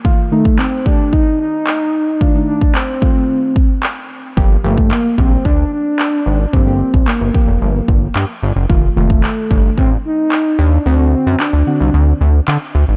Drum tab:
CP |----x-------x---|----x-------x---|----x-------x---|----x-------x---|
BD |o--o--o-o-------|o--o--o---o-----|o--o--o-o-------|o--o--o---o-----|

CP |----x-------x---|----x-------x---|
BD |o--o--o-o-------|----------------|